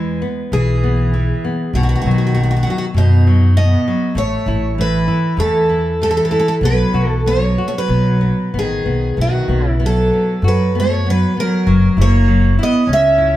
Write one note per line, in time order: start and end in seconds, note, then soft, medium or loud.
0.00 0.21 E2 medium
0.00 0.21 E3 medium
0.00 0.48 G#3 medium
0.00 0.53 B4 medium
0.22 0.52 B3 medium
0.52 1.31 B1 medium
0.52 0.83 E3 medium
0.52 1.71 E3 medium
0.52 1.71 G#4 medium
0.84 1.13 B3 medium
1.14 1.43 E3 medium
1.45 1.74 B3 soft
1.73 1.94 B1 medium
1.73 2.34 B2 medium
1.73 2.92 D#3 medium
1.73 1.82 F#4 medium
1.83 1.88 F#4 medium
1.89 1.94 F#4 medium
1.96 2.00 F#4 medium
2.02 2.63 B1 medium
2.02 2.10 F#4 medium
2.06 2.35 F#3 soft
2.11 2.17 F#4 soft
2.18 2.25 F#4 soft
2.27 2.33 F#4 soft
2.35 2.65 B2 medium
2.35 2.41 F#4 medium
2.43 2.49 F#4 soft
2.51 2.55 F#4 medium
2.57 2.62 F#4 soft
2.63 2.95 F#3 medium
2.63 2.69 F#4 medium
2.70 2.77 F#4 medium
2.78 2.85 F#4 medium
2.94 3.74 F#2 loud
2.94 3.52 B2 medium
2.94 3.25 B2 medium
2.94 3.59 D#4 medium
3.27 3.56 F#3 medium
3.57 3.86 B2 medium
3.57 4.13 B3 medium
3.57 4.18 D#5 medium
3.88 4.17 F#3 medium
4.15 4.35 A1 medium
4.15 4.73 A3 medium
4.15 4.77 A3 medium
4.15 4.80 C#5 medium
4.46 5.06 A1 medium
4.46 4.77 E4 medium
4.77 5.34 E3 medium
4.77 5.08 A3 medium
4.77 5.36 B4 medium
5.08 5.38 E4 medium
5.37 6.18 E2 loud
5.37 5.97 E3 medium
5.37 5.68 A3 medium
5.37 6.02 A4 medium
5.69 5.99 E4 medium
6.01 6.59 E3 medium
6.01 6.31 A3 medium
6.01 6.09 A4 medium
6.11 6.16 A4 medium
6.17 6.24 A4 medium
6.25 6.30 A4 medium
6.31 6.62 E4 medium
6.31 6.38 A4 medium
6.39 6.46 A4 medium
6.48 6.54 A4 medium
6.61 6.82 B1 medium
6.61 7.08 F#3 medium
6.61 7.25 B3 medium
6.65 7.09 B4 medium
6.93 7.55 B1 medium
6.93 7.24 F#4 medium
7.08 7.21 E3 medium
7.08 7.23 A4 medium
7.26 7.63 F#3 medium
7.26 7.57 B3 medium
7.26 7.64 C#5 medium
7.58 7.89 F#4 soft
7.67 7.73 A3 medium
7.67 7.74 C#5 medium
7.75 8.50 F#3 medium
7.75 8.58 B4 medium
7.88 8.30 B1 medium
7.88 8.20 B3 medium
8.21 8.52 B3 medium
8.54 8.82 A1 medium
8.54 9.14 D#3 medium
8.54 8.85 B3 medium
8.59 9.21 G#4 medium
8.86 9.14 B1 medium
8.86 9.16 B3 soft
9.17 9.37 B1 medium
9.17 9.48 B3 medium
9.21 9.64 D#3 medium
9.21 9.69 F#4 medium
9.48 10.09 B1 medium
9.48 9.78 B3 soft
9.64 9.78 C#3 medium
9.69 9.84 E4 medium
9.80 10.40 F#3 medium
9.80 10.10 B3 medium
9.86 10.47 A4 medium
10.13 10.43 B3 soft
10.42 11.23 F#2 medium
10.42 10.73 F#3 medium
10.42 11.64 F#4 medium
10.48 10.77 B4 medium
10.75 11.05 A3 medium
10.75 11.05 B3 medium
10.80 11.09 C#5 medium
11.06 11.35 F#3 medium
11.06 11.36 B3 medium
11.06 11.40 B4 medium
11.37 11.95 F#3 medium
11.37 11.66 B3 medium
11.37 11.95 A#4 medium
11.67 11.87 F#1 medium
11.67 12.27 F#3 medium
11.97 12.56 F#1 medium
11.97 12.55 A#3 medium
11.97 12.27 E4 medium
12.01 12.56 C#5 medium
12.28 12.57 F#3 medium
12.59 12.87 B3 medium
12.59 12.87 E4 medium
12.63 12.91 D#5 loud
12.87 13.37 C#2 loud
12.87 13.37 C#4 medium
12.87 13.17 C#4 medium
12.93 13.37 E5 loud
13.18 13.37 E4 medium